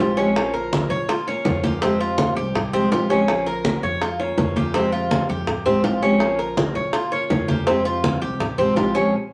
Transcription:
0.00 A#1 F3 G#3 C4 F4 G4, high bongo, low bongo, high conga
0.17 F3 G#3 C4 C#4 G4, high bongo, high conga
0.36 F3 A#3 C#4 F4, high bongo, high conga
0.54 A#4, high bongo, high conga
0.73 high bongo, high conga
0.90 A#2 C#5, high bongo, high conga
1.09 F4, muted nylon-string guitar stroke, high bongo, high conga
1.27 A#3 C#4 F4 C#5, high conga
1.45 F2 F3 A#3 C#4 F4, high bongo, low bongo, high conga
1.64 A#3 C#4 F4 G4, high bongo, high conga
1.81 C3 F3 G#3 C4 G4, high bongo, high conga
2.00 F4, high bongo, high conga
2.18 high bongo, high conga
2.36 C2 G4, high bongo, high conga
2.55 muted nylon-string guitar stroke, high bongo, high conga, low conga
2.73 F3 G#3 C4 G4, high conga
2.91 A#1 F3 G#3 C4 F4 G4, high bongo, low bongo, high conga
3.10 F3 G#3 C4 C#4 G4, high bongo, high conga
3.28 F3 A#3 C#4 F4, high bongo, high conga
3.46 A#4, high bongo, high conga
3.65 high bongo, high conga
3.83 F2 C#5, high bongo, high conga
4.02 F4, muted nylon-string guitar stroke, high bongo, high conga
4.20 A#3 C#4 F4 C#5, high conga
4.37 F2 F3 A#3 C#4 F4, high bongo, low bongo, high conga
4.56 A#3 C#4 F4 G4, high bongo, high conga
4.74 C3 F3 G#3 C4 G4, high bongo, high conga
4.92 F4, high bongo, high conga
5.11 high bongo, high conga
5.29 F2 G4, high bongo, high conga
5.47 muted nylon-string guitar stroke, high bongo, high conga, low conga
5.66 F3 G#3 C4 G4, high conga, low conga
5.84 A#1 F3 G#3 C4 F4 G4, high bongo, low bongo, high conga
6.02 F3 G#3 C4 C#4 G4, high bongo, high conga
6.20 F3 A#3 C#4 F4, high bongo, high conga
6.39 A#4, high bongo, high conga
6.57 high bongo, high conga
6.75 A#2 C#5, high bongo, high conga
6.93 F4, muted nylon-string guitar stroke, high bongo, high conga
7.12 A#3 C#4 F4 C#5, high conga
7.30 F2 F3 A#3 C#4 F4, high bongo, low bongo, high conga
7.48 A#3 C#4 F4 G4, high bongo, high conga
7.67 C3 F3 G#3 C4 G4, high bongo, high conga
7.85 F4, high bongo, high conga
8.04 high bongo, high conga
8.22 C2 G4, high bongo, high conga
8.40 muted nylon-string guitar stroke, high bongo, high conga, low conga
8.58 F3 G#3 C4 G4, high conga, low conga
8.76 A#1 F3 G#3 C4 F4 G4, high bongo, low bongo, high conga
8.95 F3 G#3 C4 C#4 G4, high bongo, high conga

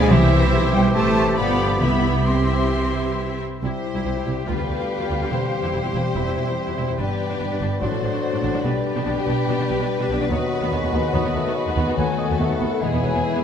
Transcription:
Already playing: D2 B2 F3 F4 G#4 D5
0.01 G#3 G#5
0.10 C2 C3 E3 C4 E4 G4 C5 E5
0.32 E4
0.53 B1 C5
0.74 G3 G5
0.94 A1 A2 A3 C4 E4 G4 C5 A5
1.16 G4 C5
1.36 G1 G2 F3 B3 F4 G4 D5 B5
1.60 G4 D5
1.80 C2 C3 E3 B3 E4 G4 E5 B5
2.27 C4 E4 G4 E5 C6
2.51 G4
2.74 G3
2.97 E4
3.20 E5
3.43 G4
3.63 C2 C3 G3 E4 G4 C5 E5
3.86 E4
3.95 C2 E4
4.05 C2 E4 C5
4.16 C2 E4
4.26 C2 E4 G5
4.47 D2 D3 B3 F4 B4 F5
4.58 D2 F4
4.69 D2 F4
4.78 D2 F4
4.90 B4
5.00 D2 F4
5.09 D2 F4 G5
5.21 D2 F4
5.31 E1 E2 E3 C4 E4 C5
5.53 E4
5.62 E2 E4
5.73 E1 E2 E4 C5
5.83 E2 E4
5.94 E1 E2 E4
6.15 E1 E2 E3 E4 E5
6.26 E2 E4
6.36 E1 E2 E4
6.47 E2 E4
6.58 C5
6.67 E2 E4
6.77 E1 E2 E4 G5
6.87 E2 E4
6.98 G1 G2 G3 B3 D4 G4 B4 D5
7.20 D4
7.29 G2 D4
7.40 G1 G2 D4 B4
7.50 G2 D4
7.61 G1 G2 D4 G5
7.80 A1 A2 F#3 D4 F#4 C5
7.92 A2 D4
8.03 A1 A2 D4
8.12 A2 D4
8.24 C5
8.34 A2 D4
8.43 A1 A2 D4 F#5
8.54 A2 D4
8.63 B1 B2 G3 D4 G4 B4
8.86 D4
8.96 B2 D4
9.06 B1 B2 D4 B4
9.16 B2 D4
9.27 B1 B2 D4 G5
9.47 B1 B2 D4
9.58 B2 D4
9.68 B1 B2 D4
9.79 B2 D4
9.89 B4
9.99 B2 D4
10.10 B1 B2 D4 G5
10.20 B2 D4
10.30 D#2 D#3 F#3 B3 F#4 D#5 F#5
10.51 B3 B5
10.61 D#2 B3
10.72 D#2 G#3 B3 B4 C#5
10.83 D#2 B3
10.93 D#2 B3 B4 F#5
11.13 D#2 D#3 F#3 B3 D#5
11.25 D#2 B3
11.34 D#2 A3 B3
11.45 D#2 B3
11.54 G#3 B4 C#5 B5
11.67 D#2 B3
11.76 D#2 B3 B4 F#5
11.87 D#2 B3
11.96 D#2 D#3 F#3 A3 B3 A4 B4 G#5
12.18 A3 D#5
12.30 D#2 B3
12.39 D#2 A3 B3 B4 C#5 F#5
12.50 D#2 B3
12.59 D#2 B3 B4 F#5
12.81 E1 E2 E3 G#3 B3 E4 G#4 B4 G#5
12.93 E2 B3
13.03 E1 E2 F#3 B3 E4
13.14 E2 B3
13.23 E3 G#4
13.35 E2 B3

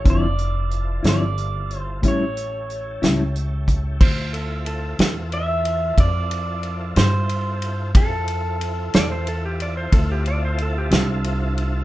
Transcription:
0.04 F1 D3 F3 C4 E4 F4 A4, kick, closed hi-hat
0.10 D5
0.38 closed hi-hat
0.71 closed hi-hat
1.03 G1 D3 F3 C4 E4, snare, closed hi-hat
1.09 D5
1.38 closed hi-hat
1.70 closed hi-hat
1.79 C5
2.02 A1 A2 G3 C#4 E4 G4 A4, kick, closed hi-hat
2.08 C#5
2.37 closed hi-hat
2.70 closed hi-hat
3.02 C#2 A2 G3 C#4 E4, snare, closed hi-hat
3.36 closed hi-hat
3.68 kick, closed hi-hat
4.00 D2 C4 E4 F4 A4 C5, kick, crash
4.33 A4, ride
4.66 A4, ride
4.99 E2, snare, ride
5.32 E5, ride
5.65 ride
5.98 F2 D5, kick, ride
6.31 ride
6.63 ride
6.96 G2 C5, snare, ride
7.29 ride
7.62 ride
7.95 F2 C4 E4 F4 A4, kick, ride
8.28 ride
8.61 ride
8.94 E2 D5, snare, ride
9.12 C5
9.27 A4, ride
9.45 G4
9.60 D5, ride
9.77 C5
9.92 D2 A4, kick, ride
10.12 G4
10.26 D5, ride
10.45 C5
10.58 ride
10.62 A4
10.78 G4
10.91 C2, snare, ride
10.95 D4
11.24 ride
11.58 ride

